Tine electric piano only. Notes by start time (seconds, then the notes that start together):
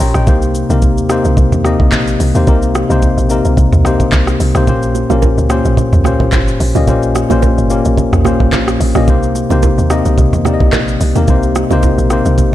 Already playing: A#2 A#3 C#4 G4 A#4 C5 C#5 C6 C#6
0.00 G5 A#5
0.15 D#5 G5
0.27 C3 A#3 D#4 G4 C5
0.69 C3 A#3 D#4 G4 A#4
1.09 C3 A#3 D#4 G4 C5
1.64 C3 A#3 D#4 G4 D#5
2.34 C3 A#3 D#4 G4 C5
2.47 C3 A#3 D#4 G4 A#4
2.89 C3 A#3 D#4 G4 C5
3.29 C3 A#3 D#4 G4 A#4
3.84 C3 A#3 D#4 G4 C5
4.54 C3 A#3 D#4 G4 C5
4.67 A#2 A#3 C#4 G4 C5
5.09 A#2 A#3 C#4 G4 A#4
5.49 A#2 A#3 C#4 G4 C5
6.04 A#2 A#3 C#4 G4 C5
6.75 A#2 A#3 C#4 G4 D#5
6.87 A#2 A#3 C#4 G4 C5
7.29 A#2 A#3 C#4 G4 C5
7.69 A#2 A#3 C#4 G4 A#4
8.24 A#2 A#3 C#4 G4 C5
8.95 A#2 A#3 C#4 G4 D#5
9.07 C3 A#3 D#4 G4 C5
9.50 C3 A#3 D#4 G4 C5
9.90 C3 A#3 D#4 G4 D#5
10.45 C3 A#3 D#4 G4 D5
10.54 D#5
11.15 C3 A#3 D#4 G4 A#4
11.28 C3 A#3 D#4 G4 C5
11.70 C3 A#3 D#4 G4 C5
12.10 C3 A#3 D#4 G4 C5